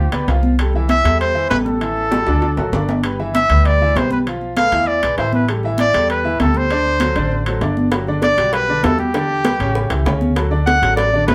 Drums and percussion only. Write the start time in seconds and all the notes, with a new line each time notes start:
0.12 high conga, high timbale
0.27 high conga, high timbale, low timbale
0.43 high conga
0.59 high timbale
0.73 high conga
0.89 high conga, high timbale, low timbale
1.05 high conga, high timbale
1.21 high conga, high timbale
1.36 high conga
1.50 high conga, high timbale, low timbale
1.66 high conga
1.81 high conga, high timbale
1.97 high conga
2.12 high conga, high timbale
2.27 high timbale
2.42 high conga, high timbale
2.57 high conga, low timbale
2.73 high conga, low timbale
2.89 high conga, low timbale
3.04 high conga, high timbale
3.20 high conga
3.35 high conga, high timbale, low timbale
3.50 high conga, high timbale
3.65 high conga, high timbale
3.80 high conga
3.96 high conga, high timbale, low timbale
4.11 high conga
4.27 high timbale
4.41 high conga
4.57 high conga, high timbale, low timbale
4.72 high timbale
4.88 high conga
5.03 high conga, high timbale
5.18 high conga, high timbale, low timbale
5.33 high conga
5.48 high conga, high timbale
5.63 high conga
5.78 high conga, high timbale, low timbale
5.94 high conga, high timbale
6.09 high conga, high timbale
6.25 high conga
6.40 high conga, high timbale, low timbale
6.54 high conga
6.69 high conga, high timbale
6.85 high conga
7.00 high conga, high timbale, low timbale
7.16 high timbale
7.32 high conga
7.46 high conga, high timbale
7.61 high conga, high timbale, low timbale
7.77 high conga
7.92 high bongo, high timbale
8.07 high conga
8.22 high bongo, high conga, high timbale, low timbale
8.38 high conga, high timbale
8.53 high bongo, high conga, high timbale
8.68 high conga
8.83 high bongo, low bongo, high conga, high timbale, low timbale
8.99 high conga
9.14 high bongo, high timbale
9.29 high conga
9.45 high bongo, high conga, high timbale, low timbale
9.60 high bongo, high timbale
9.75 high bongo, high conga
9.90 high bongo, high conga, high timbale
10.06 high bongo, low bongo, high conga, high timbale, low timbale
10.21 high bongo, high conga
10.36 high bongo, high timbale
10.52 high conga
10.67 high bongo, high conga, high timbale, low timbale
10.83 high conga, high timbale
10.97 high bongo, high conga, high timbale
11.13 high conga
11.28 high bongo, low bongo, high conga, high timbale, low timbale